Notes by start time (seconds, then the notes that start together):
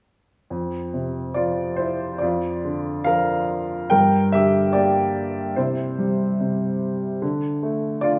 0.50 F2
0.94 C3
1.34 F3 F4 D5
1.76 E4 C5
2.18 F2 F4 D5
2.65 D3
3.04 F3 A#4 F5
3.90 G2 A#4 G5
4.32 D3 G4 E5
4.73 A#3 G4 D5
5.56 C3 E4 C5
5.99 G3
6.40 C3
7.22 D3
7.63 A3
8.01 D3 F4 D5